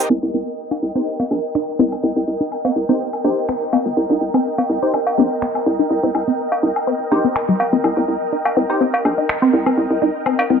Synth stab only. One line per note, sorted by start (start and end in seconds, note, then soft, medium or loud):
0.96 1.06 D#4 medium
0.96 1.06 G4 medium
0.96 1.06 C5 medium
2.89 2.95 D#4 medium
2.89 2.95 G4 medium
2.89 2.95 C5 medium
3.24 3.36 D#4 medium
3.24 3.36 G4 medium
3.24 3.36 C5 medium
4.83 4.93 D#4 medium
4.83 4.93 G4 medium
4.83 4.93 C5 medium
7.12 7.23 D#4 medium
7.12 7.23 G4 medium
7.12 7.23 C5 loud
8.70 8.80 D#4 medium
8.70 8.80 G4 medium
8.70 8.80 C5 medium